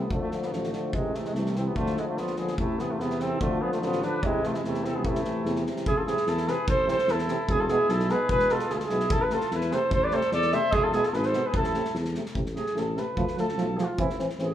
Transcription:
Already playing: C2 A3
0.01 B3
0.10 D2 D3 F3 A3, kick
0.15 A3
0.22 A3
0.31 D3 F3 A3, snare
0.43 B3, snare
0.51 A1 D3 F3 A3, snare
0.64 snare
0.73 D3 F3, snare
0.92 A1 C3 E3 G#3, kick
1.15 C3 E3 A3, snare
1.25 G#3, snare
1.33 C2 C3 E3 A3, snare
1.46 snare
1.55 C3 E3 C4, snare
1.66 B3
1.74 D2 D3 F3 A3 F4, kick
1.86 snare
1.97 D3 F3 G#3 E4, snare
2.08 A3 F4
2.16 A#1 D3 F3 B3 F4, snare
2.27 snare
2.36 D3 F3 B3 G#4, snare
2.48 snare
2.57 A1 C3 E3 A3 E4, kick
2.79 C3 E3 B3 G#4, snare
2.90 A3 F4
2.99 E2 C3 E3 B3 E4, snare
3.10 snare
3.20 C3 E3 C4 A4, snare
3.40 D2 D3 F3 A3 F4, kick
3.60 D3 F3 B3 G#4
3.72 A3 F4, snare
3.81 A1 D3 F3 B3 F4, snare
3.92 snare
4.02 D3 F3 D4 B4, snare
4.22 A1 C3 E3 G#3 E4, kick
4.43 C3 E3 A3 F4, snare
4.53 G#3 E4, snare
4.63 E2 C3 E3 A3 E4, snare
4.74 snare
4.84 C3 E3 C4 A4, snare
4.95 B3 G#4
5.03 A1 C3 E3 A3 E4, kick
5.15 snare
5.24 C3 E3, snare
5.45 E2 C3 E3, snare
5.56 snare
5.65 C3 E3, snare
5.76 snare
5.85 A1 E4 G#4, kick
5.97 F4 A4
6.07 C3 E3 E4 G#4, snare
6.17 snare
6.27 E2 E4 A4, snare
6.37 snare
6.47 C3 E3 G#4 B4, snare
6.67 A1 A4 C5, kick
6.87 C3 E3 A4, snare
6.91 C5
6.98 snare
7.07 E2 E4 A4, snare
7.19 snare
7.28 C3 E3, snare
7.48 E1 E4 G#4, kick
7.60 F4 A4
7.68 B2 G#3 E4 G#4, snare
7.89 B1 E4 A4, snare
8.00 snare
8.09 B2 G#3 G#4 B4, snare
8.29 E1 G#4 B4, kick
8.40 snare
8.49 B2 G#3 F4 A4, snare
8.59 snare
8.70 D2 G#4, snare
8.74 E4 A4
8.78 F4, snare
8.85 E4 G#4
8.90 B1 B2 G#3, snare
9.00 snare
9.10 A1 E4 A4, kick
9.22 G#4 B4
9.30 C3 A3 F4 A4, snare
9.41 snare
9.51 E2 E4 B4, snare
9.61 snare
9.71 C3 A3 A4 C5, snare
9.90 A1 A4 C5, kick
10.03 B4 D5
10.11 C3 A3 A4 C5, snare
10.21 snare
10.31 E2 A4 D5, snare
10.42 snare
10.52 C3 A3 C5 E5, snare
10.71 E1 G#4, kick
10.76 E4
10.83 F4 A4
10.93 B2 G#3 E4 G#4, snare
11.03 F4 A4, snare
11.13 G#1 G#4 B4, snare
11.23 A4 C5, snare
11.33 B2 G#3, snare
11.46 G#4 B4
11.53 A1 E4 A4, kick
11.64 snare
11.73 C3 A3, snare
11.85 snare
11.94 E2, snare
12.05 snare
12.15 C3 A3, snare
12.26 snare
12.34 A1 C3 A3, kick
12.46 snare
12.55 C3 A3 G#4, snare
12.66 snare
12.75 A1 C3 A3 A4, snare
12.95 C3 A3 B4, snare
13.16 D2 F3 A3, kick
13.28 snare
13.36 F3 A3 A4, snare
13.49 snare
13.57 B1 F3 A3, snare
13.77 F3 A3 F4, snare
13.97 A1 E3 C4 E4, kick
14.10 snare
14.18 E3 C4, snare
14.30 snare
14.38 A1 E3 C4 G#4, snare

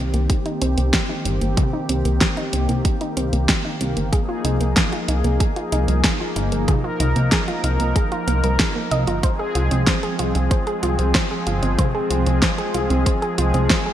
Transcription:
Already playing: C2 D#3 A#3 C4 G4
0.14 C2 A#3, closed hi-hat
0.30 G4, kick, closed hi-hat
0.46 D#4, closed hi-hat
0.62 C2 C4, closed hi-hat
0.77 C2 A#3, closed hi-hat
0.93 G4, kick, snare, closed hi-hat
1.09 D#4
1.25 G1 C4, closed hi-hat
1.41 G1 A#3, closed hi-hat
1.57 G4, kick, closed hi-hat, mid tom
1.73 D#4
1.89 C2 C4, closed hi-hat
2.05 C2 A#3, closed hi-hat
2.21 G4, kick, snare, closed hi-hat
2.37 D#4, closed hi-hat
2.53 C2 C4, closed hi-hat
2.69 C2 A#3, closed hi-hat
2.85 G4, kick, closed hi-hat
3.01 D#4, closed hi-hat
3.17 C2 C4, closed hi-hat
3.33 C2 A#3, closed hi-hat
3.49 G4, kick, snare, closed hi-hat
3.65 D#4
3.81 C2 C4, closed hi-hat
3.97 G1 A#3, closed hi-hat
4.13 F3 D#4 G#4, kick, closed hi-hat
4.29 F4
4.44 C2 D#4, closed hi-hat
4.61 C2 A#3, closed hi-hat
4.76 G#4, kick, snare, closed hi-hat
4.93 F4, closed hi-hat
5.08 C2 D#4, closed hi-hat
5.24 C2 A#3, closed hi-hat
5.40 G#4, kick, closed hi-hat
5.56 F4, closed hi-hat
5.72 C2 D#4, closed hi-hat
5.88 C2 A#3, closed hi-hat
6.04 G#4, kick, snare, closed hi-hat
6.20 F4
6.36 G1 D#4, closed hi-hat
6.52 G1 A#3, closed hi-hat
6.68 G#4 A#4, kick, closed hi-hat, mid tom
6.84 F4
7.00 C2 D#4, closed hi-hat, mid tom
7.16 C2 A#3, closed hi-hat
7.32 G#4, kick, snare, closed hi-hat
7.48 F4, closed hi-hat
7.64 C2 D#4, closed hi-hat
7.80 C2 A#3, closed hi-hat
7.96 G#4, kick, closed hi-hat
8.12 F4, closed hi-hat
8.28 C2 A#3, closed hi-hat
8.44 C2 A#4, closed hi-hat
8.60 G#4, kick, snare, closed hi-hat
8.76 A#3
8.91 C2 D#5, closed hi-hat
9.07 G1 F4, closed hi-hat
9.23 G#3 C4 G#4 C5, kick, closed hi-hat
9.39 G#4
9.55 C2 F4, closed hi-hat
9.71 C2 C4, closed hi-hat
9.87 C5, kick, snare, closed hi-hat
10.03 G#4, closed hi-hat
10.19 C2 F4, closed hi-hat
10.35 C2 C4, closed hi-hat
10.51 C5, kick, closed hi-hat
10.67 G#4, closed hi-hat
10.83 C2 F4, closed hi-hat
10.99 C2 C4, closed hi-hat
11.15 C5, kick, snare, closed hi-hat
11.31 G#4
11.47 G1 F4, closed hi-hat
11.63 G1 C4, closed hi-hat
11.79 C5, kick, closed hi-hat, mid tom
11.95 G#4
12.11 C2 F4, closed hi-hat
12.26 C2 C4, closed hi-hat
12.42 C5, kick, snare, closed hi-hat
12.58 G#4, closed hi-hat
12.74 C2 F4, closed hi-hat
12.90 C2 C4, closed hi-hat
13.06 C5, kick, closed hi-hat
13.22 G#4, closed hi-hat
13.38 C2 F4, closed hi-hat
13.54 C2 C4, closed hi-hat
13.70 C5, kick, snare, closed hi-hat
13.86 G#4

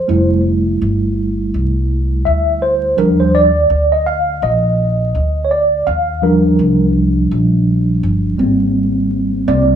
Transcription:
Already playing: C5
0.08 F1 G3 A3 E4
0.82 G1
1.54 C2
2.25 D2 E5
2.62 C5
2.97 D#2 F3 G3 D4 A#4
3.20 C5
3.35 D5
3.70 D2
3.92 D#5
4.06 F5
4.42 A#1 D#5
5.15 D2
5.45 C#5
5.51 D5
5.87 D#2 F5
6.22 F3 G3 D4 A#4
6.59 C2
7.31 A#1
8.03 G1
8.38 G#1 G3 A#3 C4
9.47 C2 G3 A#3 C4 D5

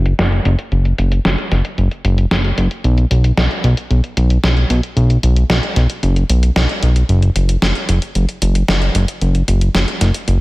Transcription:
Already playing: F#1
0.06 closed hi-hat
0.19 F#1, snare, closed hi-hat
0.32 closed hi-hat
0.45 F#1, closed hi-hat
0.59 closed hi-hat
0.72 F#1, closed hi-hat
0.85 closed hi-hat
0.98 F#1, closed hi-hat
1.12 closed hi-hat
1.25 F#1, snare, closed hi-hat
1.38 closed hi-hat
1.51 F#1, snare, closed hi-hat
1.65 closed hi-hat
1.78 F#1, closed hi-hat
1.91 closed hi-hat
2.05 F#1, closed hi-hat
2.18 closed hi-hat
2.31 F#1, snare, closed hi-hat
2.45 closed hi-hat
2.58 F#1, closed hi-hat
2.71 closed hi-hat
2.84 B1, closed hi-hat
2.98 closed hi-hat
3.11 B1, closed hi-hat
3.24 closed hi-hat
3.37 B1, snare, closed hi-hat
3.51 closed hi-hat
3.64 B1, closed hi-hat
3.77 closed hi-hat
3.90 B1, closed hi-hat
4.04 closed hi-hat
4.17 B1, closed hi-hat
4.30 closed hi-hat
4.44 B1, snare, closed hi-hat
4.57 closed hi-hat
4.70 B1, closed hi-hat
4.83 closed hi-hat
4.97 B1, closed hi-hat
5.10 closed hi-hat
5.23 B1, closed hi-hat
5.36 closed hi-hat
5.50 B1, snare, closed hi-hat
5.63 closed hi-hat
5.76 B1, snare, closed hi-hat
5.90 closed hi-hat
6.03 F#1, closed hi-hat
6.16 closed hi-hat
6.29 B1, closed hi-hat
6.43 closed hi-hat
6.56 B1, snare, closed hi-hat
6.69 closed hi-hat
6.83 B1, closed hi-hat
6.96 closed hi-hat
7.09 F#1, closed hi-hat
7.22 closed hi-hat
7.36 F#1, closed hi-hat
7.49 closed hi-hat
7.62 F#1, snare, closed hi-hat
7.75 closed hi-hat
7.89 F#1, closed hi-hat
8.02 closed hi-hat
8.15 F#1, closed hi-hat
8.29 closed hi-hat
8.42 F#1, closed hi-hat
8.55 closed hi-hat
8.68 F#1, snare, closed hi-hat
8.82 closed hi-hat
8.95 F#1, closed hi-hat
9.08 closed hi-hat
9.21 F#1, closed hi-hat
9.35 closed hi-hat
9.48 F#1, closed hi-hat
9.61 closed hi-hat
9.75 F#1, snare, closed hi-hat
9.88 closed hi-hat
10.01 F#1, snare, closed hi-hat
10.14 closed hi-hat
10.28 F#1, closed hi-hat

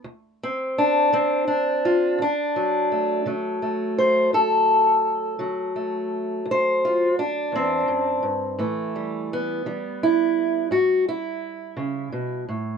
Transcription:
0.04 D2
0.43 C4
0.78 D4
1.12 D3 C4
1.48 D4
1.85 F4
2.19 D2 D4
2.56 F#3
2.92 A3
3.26 D3 F#3
3.62 A3
3.98 C5
4.33 D2 A4
5.39 D3 F#3
5.76 A3
6.46 D2
6.51 C5
6.85 F4
7.19 D4
7.52 E2 C4
7.88 F#2
8.23 G2
8.59 A2 E3 A3
8.96 G3
9.33 B3
9.66 E3 G3
10.03 E4
10.71 A2 F#4
11.09 E4
11.77 C#3
12.12 B2
12.49 A2

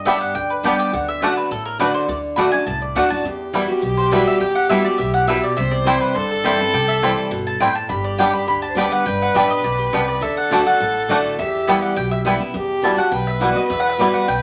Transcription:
Already playing: G1 G2
0.05 G3 B3 D4 G4 D5 E5 G5
0.21 F#5
0.35 D2 D3 G5
0.50 B4
0.63 G3 B3 D4 G4 D5 G5
0.80 G5
0.93 D2 D3 F#5
1.08 E5
1.22 D3 A3 D4 F#4 D5 F#5
1.37 B4
1.51 A1 A2 A4
1.65 A#4
1.79 D3 A3 D4 F#4 B4 D5 F#5
1.94 C5
2.08 D2 D3 D5
2.36 D3 A3 D4 F#4 D5 F#5 B5
2.52 D4 F#4 G#5
2.66 C2 A2 A5
2.82 D5
2.95 D2 D3 A3 D4 F#4 D5 F#5
3.10 D4 F#4 A5
3.24 E2 G4
3.53 E3 G3 B3 E4 F#4 B4 E5
3.68 B3 F#4
3.82 B1 B2
3.97 C5
4.11 E3 G3 B3 E4 F#4 B4 D5 E5
4.27 E5
4.40 E2 G5
4.55 F#5
4.69 E3 G3 B3 E4 F#4 B4 E5
4.84 B3 F#4 D5
4.98 B1 A2 E5
5.14 F#5
5.27 B2 G3 B3 E4 B4 E5
5.44 D5
5.57 C2 C3 C5 E5
5.71 D5
5.85 E3 G3 C4 E4 C5 G5
6.01 B4
6.15 G1 G2 A4 C5
6.31 A4
6.44 E3 G3 C4 E4 G4 C5 G5
6.59 C4 E4 B4
6.73 C2 C3 G5
6.88 E5
7.02 E3 G3 C4 E4 C5 G5
7.31 G1 B2
7.47 A5
7.60 A2 G3 C4 E4 C5 G5
7.75 A5
7.89 G1 G2 G4 B5
8.04 D5
8.18 G3 B3 D4 G4 D5 G5
8.33 D4 G4 B5
8.47 D2 D3 B5
8.62 A5
8.69 C5
8.75 G3 B3 D4 G4 B4 D5 G5
8.92 F#5
9.06 G1 G2 G5
9.22 F#5
9.34 A1 G3 B3 D4 G4 D5 E5 G5
9.50 D#5
9.64 B1 B2 D5
9.78 G4
9.93 C2 C3 G3 B3 D4 G4 B4 D5 G5
10.08 D5
10.21 D2 D3 A4 E5
10.37 F#5
10.51 D3 A3 D4 F#4 D5 F#5 G5
10.65 D4 F#4 F#5
10.80 A1 A2
11.08 D3 A3 D4 F#4 D5 F#5
11.39 E2 G4 E5
11.67 E3 G3 B3 E4 B4 G5
11.82 F#5
11.96 B1 B2 G5
12.11 E5
12.25 E3 G3 B3 E4 B4 G5
12.40 B3 E4
12.54 E2 G4
12.82 E3 G3 B3 E4 F#4 A5
12.97 B3 F#4 F#5
13.11 B1 B2 B4 G5
13.27 E5
13.40 E3 G3 B3 E4 F#4 F#5
13.55 B3 F#4 D#5
13.70 E2 E5
13.80 F#5
13.90 E5
13.98 E3 G3 B3 E4 F#4 D5
14.14 F#5
14.28 B1 B2 G5

